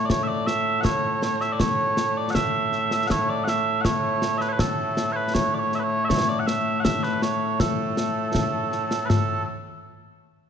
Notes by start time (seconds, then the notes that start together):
Already playing: A2 A3
0.05 D5
0.10 C#5, concert bass drum, snare
0.23 E5
0.28 D5
0.47 E5, snare
0.81 C#5 F#5
0.85 concert bass drum, snare
1.22 snare
1.41 E5, snare
1.52 D5
1.60 C#5, concert bass drum, snare
1.97 snare
2.17 D5
2.31 F#5
2.35 E5, concert bass drum, snare
2.72 snare
2.91 snare
3.07 C#5 F#5, concert bass drum, snare
3.29 D5
3.44 F#5, snare
3.48 E5
3.81 F#5, concert bass drum, snare
3.85 C#5
4.22 snare
4.38 B4 E5, snare
4.49 B4 C#5
4.59 A4, concert bass drum, snare
4.97 snare
5.12 B4 C#5
5.34 C#5, concert bass drum, snare
5.54 D5
5.59 C#5
5.72 E5, snare
5.79 B4
5.83 C#5
6.05 E5
6.09 C#5, concert bass drum, snare
6.28 D5
6.39 F#5
6.46 E5, snare
6.80 F#5
6.84 E5, concert bass drum, snare
7.03 B4, snare
7.22 C#5, snare
7.60 A4, concert bass drum, snare
7.97 snare
8.35 concert bass drum, snare
8.72 snare
8.91 snare
9.05 A4 B4
9.10 snare, mid tom